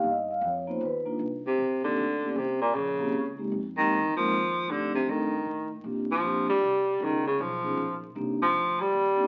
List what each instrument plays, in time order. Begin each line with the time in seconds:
0.03 upright bass G2
0.09 vibraphone D#5
0.31 vibraphone F5
0.41 upright bass F2
0.47 vibraphone C#5
0.67 vibraphone A#3 B3 D#4 F4 C5
0.81 upright bass D#2
0.85 vibraphone B4
1.06 vibraphone A#3 D4 D#4 F4
1.19 upright bass C2
1.47 baritone saxophone C3
1.58 upright bass A#1
1.83 baritone saxophone D3, vibraphone A#3 C4 D4 D#4 G4
1.97 upright bass D2
2.23 vibraphone A#3 C4 C#4 E4 G4
2.35 upright bass C2, baritone saxophone C3
2.61 baritone saxophone A#2
2.74 upright bass A#1, baritone saxophone C#3
2.99 vibraphone A#3 C4 C#4 E4 G4
3.12 upright bass C#2
3.38 vibraphone G#3 A#3 C4 D#4 G4
3.52 upright bass F2
3.77 baritone saxophone D#3, vibraphone G#3 A#3 C4 D#4 G4
3.90 upright bass E2
4.14 baritone saxophone F3, vibraphone G#3 A#3 C4 D#4 A#4, muted upright bass stroke
4.29 upright bass D#2
4.67 upright bass F2, baritone saxophone D3, vibraphone A3 C4 D4 D#4 G4
4.95 baritone saxophone C3
5.06 upright bass G2, baritone saxophone D#3, vibraphone A3 C4 D4 D#4 A4
5.45 upright bass A2
5.84 upright bass A#2, vibraphone A#3 C4 D4 F4 G4
6.12 baritone saxophone F3
6.23 upright bass A#1, vibraphone A#3 C4 D4 F4 G4
6.48 baritone saxophone G3, muted upright bass stroke
6.61 upright bass C2
6.99 upright bass C#2, vibraphone B3 C#4 D#4 F4 G#4
7.03 baritone saxophone D#3
7.27 baritone saxophone C#3
7.38 upright bass B1, baritone saxophone F3
7.63 vibraphone B3 C#4 D#4 F4 G#4
7.77 upright bass A#1
8.15 upright bass C2, vibraphone A#3 C4 D4 D#4 G4
8.42 baritone saxophone F3
8.54 upright bass D2
8.80 baritone saxophone G3
8.93 upright bass D#2
9.17 vibraphone A#3 C4 D4 D#4 G4